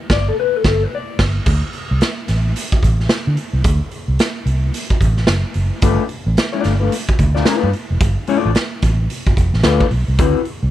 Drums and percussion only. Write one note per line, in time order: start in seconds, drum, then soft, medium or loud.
0.10 kick loud
0.10 snare loud
0.64 kick loud
0.64 snare loud
1.19 kick loud
1.19 snare loud
1.19 crash medium
1.46 kick loud
1.46 crash loud
1.73 closed hi-hat medium
2.01 snare loud
2.01 closed hi-hat medium
2.28 snare soft
2.28 closed hi-hat medium
2.56 closed hi-hat loud
2.72 kick medium
2.83 kick medium
2.83 closed hi-hat medium
3.00 snare soft
3.09 snare loud
3.09 closed hi-hat medium
3.37 closed hi-hat medium
3.64 kick loud
3.64 closed hi-hat loud
3.91 closed hi-hat medium
4.19 snare loud
4.19 closed hi-hat medium
4.47 closed hi-hat medium
4.74 closed hi-hat loud
4.90 kick medium
5.01 kick medium
5.01 closed hi-hat medium
5.17 snare soft
5.27 snare loud
5.27 closed hi-hat medium
5.54 closed hi-hat medium
5.82 kick loud
5.82 closed hi-hat loud
6.09 closed hi-hat medium
6.37 snare loud
6.37 closed hi-hat loud
6.64 snare soft
6.64 closed hi-hat medium
6.92 closed hi-hat medium
7.09 kick medium
7.19 kick medium
7.19 closed hi-hat medium
7.36 snare soft
7.45 snare loud
7.45 closed hi-hat medium
7.73 closed hi-hat medium
8.01 kick loud
8.01 closed hi-hat loud
8.27 closed hi-hat medium
8.55 snare loud
8.55 closed hi-hat medium
8.82 kick medium
8.82 closed hi-hat medium
9.10 closed hi-hat loud
9.27 kick medium
9.37 kick medium
9.37 closed hi-hat medium
9.54 snare soft
9.63 snare loud
9.63 closed hi-hat medium
9.81 kick loud
9.91 open hi-hat medium
10.19 kick loud
10.19 closed hi-hat loud
10.45 closed hi-hat medium